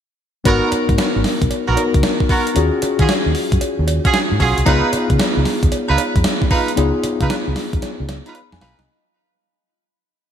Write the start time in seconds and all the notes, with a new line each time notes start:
0.44 G#1 B3 D#4 F#4 A#4, kick, closed hi-hat, cowbell
0.72 muted fingered electric bass stroke, closed hi-hat, cowbell
0.89 G#2, kick, closed hi-hat
0.98 snare, closed hi-hat, cowbell
1.16 G#1
1.24 snare, open hi-hat
1.42 B1, kick, closed hi-hat
1.51 muted fingered electric bass stroke, closed hi-hat, cowbell
1.68 A#1 B3 F#4 A#4
1.76 B3 D#4 F#4 A#4, closed hi-hat, cowbell
1.94 C#2, kick, closed hi-hat
2.03 snare, closed hi-hat, cowbell
2.20 kick
2.29 B3 F#4 A#4, kick, open hi-hat
2.47 closed hi-hat
2.55 D#2 C#4 F4 F#4 G#4, closed hi-hat, cowbell
2.82 muted fingered electric bass stroke, closed hi-hat, cowbell
2.99 D#3 C#4 F4 F#4 G#4, kick, closed hi-hat
3.09 snare, closed hi-hat, cowbell
3.26 D#2
3.35 open hi-hat
3.52 F#2, kick, closed hi-hat
3.61 muted fingered electric bass stroke, closed hi-hat, cowbell
3.79 D#2
3.88 closed hi-hat, cowbell
4.04 C#4 F4 F#4 G#4, kick, closed hi-hat
4.13 snare, closed hi-hat, cowbell
4.32 G#2
4.40 B1 C#4 F4 F#4 G#4, kick, open hi-hat
4.58 C2, closed hi-hat
4.66 C#2 B3 D#4 F4 G#4 B4, kick, closed hi-hat, cowbell
4.93 muted fingered electric bass stroke, closed hi-hat, cowbell
5.10 C#3, kick, closed hi-hat
5.19 snare, closed hi-hat, cowbell
5.37 C#2
5.45 snare, open hi-hat
5.63 D#2, kick, closed hi-hat
5.72 muted fingered electric bass stroke, closed hi-hat, cowbell
5.89 C#2 D#4 F4 B4
5.98 closed hi-hat, cowbell
6.16 F2, kick, closed hi-hat
6.24 snare, closed hi-hat, cowbell
6.42 kick
6.50 D#4 F4 B4, kick, open hi-hat
6.68 closed hi-hat
6.76 C#2 B3 D#4 F4 G#4, closed hi-hat, cowbell
7.03 muted fingered electric bass stroke, closed hi-hat, cowbell
7.20 C#3 D#4 F4 B4, kick, closed hi-hat
7.30 snare, closed hi-hat, cowbell
7.48 C#2
7.56 snare, open hi-hat
7.73 D#2, kick, closed hi-hat
7.82 muted fingered electric bass stroke, snare, closed hi-hat, cowbell
8.00 C#2
8.09 snare, closed hi-hat, cowbell
8.26 D#4 F4 B4, closed hi-hat
8.35 B5, closed hi-hat, cowbell
8.52 F2 G#5, snare
8.61 B1 D#4 F4 B4 F5, snare, open hi-hat
8.79 C2 D#5, snare, closed hi-hat